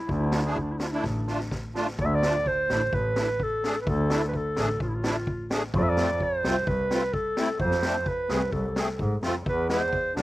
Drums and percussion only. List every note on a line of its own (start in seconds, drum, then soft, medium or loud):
0.09 kick medium
0.32 snare medium
0.56 kick medium
0.80 snare medium
1.04 kick medium
1.04 snare soft
1.28 snare soft
1.39 snare soft
1.51 kick medium
1.51 snare medium
1.75 snare medium
1.87 snare soft
1.99 kick medium
2.22 snare medium
2.46 kick medium
2.70 snare medium
2.93 kick medium
3.16 snare medium
3.40 kick medium
3.64 snare medium
3.87 kick medium
4.10 snare medium
4.34 kick medium
4.56 snare medium
4.80 kick medium
5.04 snare medium
5.27 kick medium
5.50 snare medium
5.74 kick loud
5.97 snare medium
6.20 kick medium
6.44 snare medium
6.67 kick medium
6.91 snare medium
7.14 kick medium
7.37 snare medium
7.60 kick medium
7.71 snare medium
7.82 snare medium
8.06 kick medium
8.29 snare medium
8.52 kick medium
8.76 snare medium
8.99 kick medium
9.23 snare medium
9.46 kick medium
9.69 snare medium
9.93 kick medium
10.17 snare medium